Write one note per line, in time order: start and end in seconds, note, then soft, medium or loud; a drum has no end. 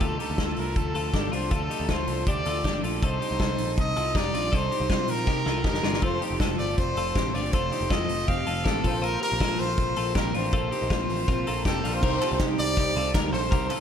0.00 0.17 D2 medium
0.00 0.20 D3 medium
0.00 0.21 F3 medium
0.00 0.20 A3 medium
0.00 0.18 D4 medium
0.00 0.20 F4 medium
0.00 0.19 A4 medium
0.00 0.20 A4 medium
0.00 kick loud
0.00 closed hi-hat medium
0.19 0.37 F3 soft
0.19 0.38 A3 soft
0.19 0.38 D4 soft
0.19 0.39 D#4 medium
0.19 0.38 G4 medium
0.19 0.60 A4 medium
0.19 open hi-hat medium
0.30 0.37 D2 medium
0.38 0.54 D2 medium
0.38 0.57 D3 medium
0.38 0.57 F3 medium
0.38 0.57 A3 medium
0.38 0.55 D4 medium
0.38 0.92 F4 medium
0.38 0.92 A4 medium
0.38 kick medium
0.38 snare loud
0.38 closed hi-hat medium
0.56 0.76 C2 medium
0.56 0.76 F3 soft
0.56 0.77 A3 soft
0.56 0.76 D4 medium
0.56 0.78 A#4 medium
0.56 open hi-hat medium
0.76 0.92 D2 medium
0.76 1.13 D3 soft
0.76 1.13 F3 medium
0.76 1.14 A3 medium
0.76 1.15 D4 medium
0.76 1.35 A4 medium
0.76 kick loud
0.76 closed hi-hat medium
0.94 1.10 D2 loud
0.94 1.14 F4 medium
0.94 1.13 A4 medium
0.94 open hi-hat medium
1.13 1.29 G1 medium
1.13 1.33 D3 medium
1.13 1.33 F3 medium
1.13 1.33 A3 medium
1.13 1.31 D4 medium
1.13 1.33 G4 medium
1.13 kick medium
1.13 snare medium
1.13 closed hi-hat medium
1.32 1.48 C2 medium
1.32 1.52 A3 soft
1.32 1.52 D4 soft
1.32 1.52 D4 medium
1.32 1.50 F4 medium
1.32 1.53 C5 medium
1.32 open hi-hat medium
1.36 1.52 F3 soft
1.51 1.67 D2 medium
1.51 1.71 D3 medium
1.51 1.71 F3 medium
1.51 1.71 A3 medium
1.51 1.70 D4 medium
1.51 1.70 F4 medium
1.51 1.70 A4 medium
1.51 1.92 A4 medium
1.51 kick loud
1.51 closed hi-hat medium
1.70 1.90 A3 soft
1.70 1.90 D4 soft
1.70 1.89 D#4 medium
1.70 1.89 G4 medium
1.70 open hi-hat medium
1.75 1.89 F3 soft
1.80 1.88 D2 medium
1.89 2.05 D2 medium
1.89 2.08 D3 medium
1.89 2.09 F3 medium
1.89 2.09 A3 medium
1.89 2.08 D4 medium
1.89 2.25 F4 medium
1.89 2.25 A4 medium
1.89 2.27 C5 medium
1.89 kick medium
1.89 snare loud
1.89 closed hi-hat medium
2.07 2.23 C2 medium
2.07 2.28 A3 soft
2.07 2.27 D4 medium
2.07 open hi-hat medium
2.12 2.27 F3 soft
2.27 2.42 D2 medium
2.27 2.64 D3 soft
2.27 2.64 F3 medium
2.27 2.65 A3 medium
2.27 2.46 D4 medium
2.27 2.66 D4 medium
2.27 2.46 G4 medium
2.27 2.80 D5 medium
2.27 kick loud
2.27 closed hi-hat medium
2.45 2.66 D2 loud
2.45 2.65 F4 medium
2.45 2.65 A4 medium
2.45 open hi-hat medium
2.64 2.80 G1 medium
2.64 2.84 D3 medium
2.64 2.84 F3 medium
2.64 2.84 A3 medium
2.64 2.84 D4 medium
2.64 2.82 D4 medium
2.64 2.83 G4 medium
2.64 kick medium
2.64 snare medium
2.64 closed hi-hat medium
2.83 2.99 A#1 medium
2.83 3.04 F3 soft
2.83 3.03 A3 medium
2.83 3.02 D4 medium
2.83 3.03 F4 medium
2.83 3.02 A4 medium
2.83 open hi-hat medium
3.02 3.18 C2 loud
3.02 3.22 C3 medium
3.02 3.22 G3 medium
3.02 3.22 C4 medium
3.02 3.21 D#4 medium
3.02 3.19 D#4 medium
3.02 3.20 A4 loud
3.02 3.75 C5 medium
3.02 kick loud
3.02 closed hi-hat medium
3.21 3.39 G3 soft
3.21 3.40 C4 soft
3.21 3.40 D#4 soft
3.21 3.40 D#4 medium
3.21 3.40 G4 medium
3.21 open hi-hat medium
3.31 3.38 C2 medium
3.39 3.55 C2 medium
3.39 3.58 C3 medium
3.39 3.59 G3 medium
3.39 3.59 C4 medium
3.39 3.93 D#4 medium
3.39 3.57 D#4 medium
3.39 3.93 A4 medium
3.39 kick loud
3.39 snare loud
3.39 closed hi-hat medium
3.58 3.78 A#1 medium
3.58 3.77 G3 medium
3.58 3.78 C4 medium
3.58 3.77 D#4 medium
3.58 open hi-hat medium
3.76 3.93 C2 loud
3.76 4.13 C3 medium
3.76 4.14 G3 medium
3.76 4.16 C4 medium
3.76 4.16 D#4 medium
3.76 kick loud
3.76 closed hi-hat medium
3.80 4.18 D#5 loud
3.96 4.12 C2 loud
3.96 4.15 F4 medium
3.96 4.15 A4 medium
3.96 open hi-hat medium
4.14 4.31 F1 medium
4.14 4.34 C3 medium
4.14 4.34 G3 medium
4.14 4.35 C4 medium
4.14 4.34 D#4 medium
4.14 4.33 D#4 medium
4.14 4.34 G4 medium
4.14 4.56 D5 medium
4.14 kick loud
4.14 snare medium
4.14 closed hi-hat medium
4.34 4.49 A#1 medium
4.34 4.51 G3 soft
4.34 4.52 C4 soft
4.34 4.53 D4 medium
4.34 4.53 D#4 soft
4.34 4.53 F4 medium
4.34 open hi-hat medium
4.52 4.68 C2 medium
4.52 4.71 C3 medium
4.52 4.71 G3 medium
4.52 4.71 C4 medium
4.52 4.71 D#4 medium
4.52 4.69 D#4 loud
4.52 4.71 A4 medium
4.52 5.11 C5 medium
4.52 kick loud
4.52 closed hi-hat medium
4.70 4.90 G3 soft
4.70 4.90 C4 medium
4.70 4.89 D#4 soft
4.70 4.90 D#4 medium
4.70 4.89 G4 medium
4.70 open hi-hat medium
4.80 4.88 C2 loud
4.89 5.08 C2 medium
4.89 5.09 C3 medium
4.89 5.09 G3 medium
4.89 5.26 C4 medium
4.89 5.09 C4 medium
4.89 5.07 D#4 medium
4.89 5.25 F4 medium
4.89 kick medium
4.89 snare loud
4.89 closed hi-hat medium
5.08 5.27 A#1 medium
5.08 5.27 C4 soft
5.08 5.28 D#4 soft
5.08 5.66 A#4 loud
5.08 open hi-hat medium
5.12 5.27 G3 soft
5.26 5.43 C2 loud
5.26 5.64 C3 medium
5.26 5.65 G3 medium
5.26 5.66 C4 medium
5.26 5.47 D#4 medium
5.26 5.66 D#4 medium
5.26 5.46 G4 medium
5.26 kick loud
5.26 snare soft
5.46 5.62 C2 loud
5.46 5.64 F4 medium
5.46 5.65 A4 medium
5.46 snare medium
5.64 5.80 F1 medium
5.64 5.84 C3 medium
5.64 5.85 G3 medium
5.64 5.85 C4 medium
5.64 5.84 D#4 medium
5.64 5.83 D#4 medium
5.64 5.83 G4 medium
5.64 6.05 A#4 medium
5.64 kick loud
5.64 snare medium
5.74 snare medium
5.83 5.99 G1 medium
5.83 6.03 G3 soft
5.83 6.03 C4 soft
5.83 6.03 D4 medium
5.83 6.03 D#4 soft
5.83 6.02 F4 medium
5.83 snare loud
5.93 snare medium
6.02 6.18 F1 medium
6.02 6.22 F2 medium
6.02 6.22 C3 medium
6.02 6.22 F3 medium
6.02 6.22 A3 medium
6.02 6.20 C4 medium
6.02 8.80 F4 medium
6.02 6.21 F4 medium
6.02 6.22 A4 medium
6.02 8.81 A4 medium
6.02 6.22 C5 medium
6.02 8.82 C5 medium
6.02 kick loud
6.02 closed hi-hat medium
6.21 6.41 F3 soft
6.21 6.41 A3 soft
6.21 6.40 C4 medium
6.21 6.41 D#4 medium
6.21 6.40 G4 medium
6.21 open hi-hat medium
6.31 6.39 F1 medium
6.40 6.56 F1 medium
6.40 6.59 F2 medium
6.40 6.60 C3 medium
6.40 6.60 F3 medium
6.40 6.59 A3 medium
6.40 6.58 C4 medium
6.40 6.94 F4 medium
6.40 6.94 A4 medium
6.40 kick loud
6.40 snare loud
6.40 closed hi-hat medium
6.59 6.74 G1 medium
6.59 6.77 F3 soft
6.59 6.79 A3 soft
6.59 6.78 C4 medium
6.59 6.77 D5 loud
6.59 open hi-hat medium
6.77 6.93 F1 loud
6.77 7.15 C3 soft
6.77 7.16 F3 medium
6.77 7.17 A3 medium
6.77 7.18 C4 medium
6.77 7.36 C5 medium
6.77 kick loud
6.77 closed hi-hat medium
6.96 7.12 F1 loud
6.96 7.16 F4 medium
6.96 7.16 A4 medium
6.96 open hi-hat medium
7.15 7.31 A1 medium
7.15 7.35 F2 medium
7.15 7.35 C3 medium
7.15 7.35 F3 medium
7.15 7.34 A3 medium
7.15 7.35 C4 medium
7.15 7.32 C4 medium
7.15 7.34 G4 medium
7.15 kick loud
7.15 snare medium
7.15 closed hi-hat medium
7.33 7.53 G1 medium
7.33 7.53 F3 soft
7.33 7.54 A3 soft
7.33 7.53 C4 soft
7.33 7.54 D4 medium
7.33 7.53 F4 medium
7.33 7.54 D5 medium
7.33 open hi-hat medium
7.52 7.69 F1 medium
7.52 7.72 F2 medium
7.52 7.72 C3 medium
7.52 7.73 F3 medium
7.52 7.72 A3 medium
7.52 7.71 C4 medium
7.52 7.71 F4 medium
7.52 7.72 A4 medium
7.52 7.90 C5 medium
7.52 kick loud
7.52 closed hi-hat medium
7.72 7.91 F3 soft
7.72 7.92 A3 soft
7.72 7.91 C4 medium
7.72 7.91 D#4 medium
7.72 7.91 G4 medium
7.72 open hi-hat medium
7.81 7.89 F1 loud
7.90 8.06 F1 medium
7.90 8.10 F2 medium
7.90 8.10 C3 medium
7.90 8.10 F3 medium
7.90 8.11 A3 medium
7.90 8.09 C4 medium
7.90 8.26 F4 medium
7.90 8.26 A4 medium
7.90 8.30 D#5 medium
7.90 kick loud
7.90 snare loud
7.90 closed hi-hat medium
8.08 8.24 F1 medium
8.08 8.30 A3 soft
8.08 8.29 C4 soft
8.08 open hi-hat medium
8.14 8.29 F3 soft
8.28 8.44 F1 loud
8.28 8.65 C3 medium
8.28 8.67 F3 medium
8.28 8.66 A3 medium
8.28 8.47 C4 medium
8.28 8.68 C4 medium
8.28 8.47 G4 medium
8.28 8.67 F5 loud
8.28 kick loud
8.28 closed hi-hat medium
8.47 8.62 F1 medium
8.47 8.64 F4 medium
8.47 8.66 A4 medium
8.47 open hi-hat medium
8.64 8.81 A1 medium
8.64 8.85 F2 medium
8.64 8.85 C3 medium
8.64 8.86 F3 medium
8.64 8.86 A3 medium
8.64 8.84 C4 medium
8.64 8.83 C4 medium
8.64 8.84 G4 medium
8.64 9.05 A4 medium
8.64 kick medium
8.64 snare medium
8.64 closed hi-hat medium
8.84 9.15 A#1 medium
8.84 9.04 A#3 soft
8.84 9.03 C4 medium
8.84 11.80 F4 medium
8.84 9.01 F4 medium
8.84 9.02 A4 medium
8.84 11.81 A#4 medium
8.84 11.81 C5 medium
8.84 kick loud
8.84 open hi-hat medium
8.88 9.04 F3 soft
9.02 9.22 A#2 medium
9.02 9.23 F3 medium
9.02 9.23 A#3 loud
9.02 9.21 F4 medium
9.02 9.22 A#4 loud
9.02 9.20 C5 loud
9.02 closed hi-hat medium
9.06 9.21 C4 loud
9.21 9.42 A#3 medium
9.21 9.41 C4 medium
9.21 9.41 G4 medium
9.21 9.40 A#4 medium
9.21 9.61 A#4 loud
9.21 open hi-hat medium
9.26 9.41 F3 soft
9.32 9.39 A#1 loud
9.40 9.56 A#1 medium
9.40 9.60 A#2 medium
9.40 9.60 F3 medium
9.40 9.61 A#3 medium
9.40 9.60 C4 medium
9.40 9.94 F4 medium
9.40 9.93 A4 medium
9.40 kick loud
9.40 snare loud
9.40 closed hi-hat medium
9.58 9.75 A#1 medium
9.58 9.80 A#3 soft
9.58 9.79 C4 medium
9.58 10.18 C5 loud
9.58 open hi-hat medium
9.64 9.79 F3 soft
9.78 9.93 A#1 loud
9.78 10.14 A#2 medium
9.78 10.15 F3 medium
9.78 10.15 A#3 medium
9.78 kick loud
9.78 closed hi-hat medium
9.82 10.17 C4 medium
9.96 10.13 A#1 loud
9.96 10.14 F4 medium
9.96 10.16 A4 medium
9.96 open hi-hat medium
10.15 10.31 A#1 medium
10.15 10.34 A#2 medium
10.15 10.35 F3 medium
10.15 10.35 A#3 medium
10.15 10.34 C4 medium
10.15 10.33 C4 medium
10.15 10.34 G4 medium
10.15 10.37 A#4 medium
10.15 kick medium
10.15 snare loud
10.15 closed hi-hat medium
10.34 10.50 A1 medium
10.34 10.52 F3 soft
10.34 10.53 A#3 soft
10.34 10.53 C4 medium
10.34 10.54 D4 medium
10.34 10.53 F4 medium
10.34 11.66 C5 medium
10.34 open hi-hat medium
10.53 10.69 A#1 loud
10.53 10.72 A#2 medium
10.53 10.72 F3 medium
10.53 10.73 A#3 medium
10.53 10.71 C4 medium
10.53 10.71 F4 medium
10.53 10.72 A4 loud
10.53 kick loud
10.53 closed hi-hat medium
10.71 10.91 F3 soft
10.71 10.91 A#3 soft
10.71 10.91 C4 medium
10.71 10.90 D#4 medium
10.71 10.90 G4 medium
10.71 open hi-hat medium
10.82 10.90 A#1 medium
10.90 11.06 A#1 medium
10.90 11.09 A#2 medium
10.90 11.10 F3 medium
10.90 11.10 A#3 medium
10.90 11.26 C4 medium
10.90 11.09 C4 medium
10.90 11.26 F4 medium
10.90 kick loud
10.90 snare loud
10.90 closed hi-hat medium
11.09 11.24 A1 medium
11.09 11.29 A#3 medium
11.09 11.28 C4 medium
11.09 open hi-hat medium
11.13 11.28 F3 soft
11.28 11.43 A#1 loud
11.28 11.64 A#2 medium
11.28 11.66 F3 medium
11.28 11.66 A#3 medium
11.28 11.47 C4 medium
11.28 11.68 C4 medium
11.28 11.47 F4 medium
11.28 kick loud
11.28 closed hi-hat medium
11.47 11.63 A#1 medium
11.47 11.65 F4 medium
11.47 11.66 A4 medium
11.47 11.65 A#5 medium
11.47 open hi-hat medium
11.65 11.81 F1 medium
11.65 11.84 A#2 medium
11.65 11.85 F3 medium
11.65 11.85 A#3 medium
11.65 11.84 C4 medium
11.65 11.83 G4 medium
11.65 11.96 A4 medium
11.65 11.83 G5 medium
11.65 kick medium
11.65 snare medium
11.65 closed hi-hat medium
11.84 11.99 A#1 medium
11.84 12.04 A#3 medium
11.84 12.03 C4 medium
11.84 12.03 D4 medium
11.84 12.03 F4 medium
11.84 12.02 F5 medium
11.84 open hi-hat medium
11.88 12.04 F3 soft
11.94 12.40 C5 medium
12.01 12.18 C2 loud
12.01 12.22 C3 medium
12.01 12.22 G3 loud
12.01 13.80 C4 medium
12.01 13.80 D#4 medium
12.01 13.80 G4 medium
12.01 12.22 G4 medium
12.01 12.21 A#4 medium
12.01 13.80 C5 medium
12.01 kick loud
12.01 crash loud
12.05 12.22 C4 medium
12.05 12.20 D#4 medium
12.21 12.77 G3 medium
12.21 12.77 C4 medium
12.21 12.79 D#4 medium
12.21 12.40 F4 medium
12.21 12.40 A4 medium
12.21 clap medium
12.21 open hi-hat medium
12.32 12.39 C2 loud
12.40 12.76 D#4 medium
12.40 12.75 G4 medium
12.40 kick loud
12.40 snare loud
12.40 clap medium
12.40 closed hi-hat medium
12.58 12.74 C2 medium
12.58 13.11 D5 loud
12.58 open hi-hat medium
12.77 12.93 C2 loud
12.77 12.96 C3 medium
12.77 12.96 G3 medium
12.77 12.97 C4 medium
12.77 12.97 D#4 medium
12.77 12.94 D#4 medium
12.77 12.96 G4 medium
12.77 kick loud
12.77 closed hi-hat medium
12.96 13.11 C2 loud
12.96 13.14 G3 soft
12.96 13.15 C4 medium
12.96 13.14 D#4 medium
12.96 13.15 F4 medium
12.96 13.14 A4 medium
12.96 open hi-hat medium
13.14 13.30 D2 medium
13.14 13.51 C3 medium
13.14 13.52 G3 medium
13.14 13.53 C4 medium
13.14 13.54 D#4 medium
13.14 13.33 G4 medium
13.14 13.32 A#4 medium
13.14 kick loud
13.14 snare loud
13.14 clap medium
13.14 closed hi-hat medium
13.33 13.48 A#1 loud
13.33 13.52 A4 medium
13.33 13.80 C5 medium
13.33 13.51 C5 medium
13.33 open hi-hat medium
13.51 13.67 C2 loud
13.51 13.70 C3 medium
13.51 13.71 G3 medium
13.51 13.70 C4 loud
13.51 13.68 D#4 loud
13.51 13.70 G4 medium
13.51 13.69 A#4 loud
13.51 kick loud
13.51 closed hi-hat medium
13.69 13.80 G3 medium
13.69 13.80 C4 medium
13.69 13.80 D#4 medium
13.69 13.80 F4 medium
13.69 13.80 A4 medium
13.69 clap medium
13.69 open hi-hat medium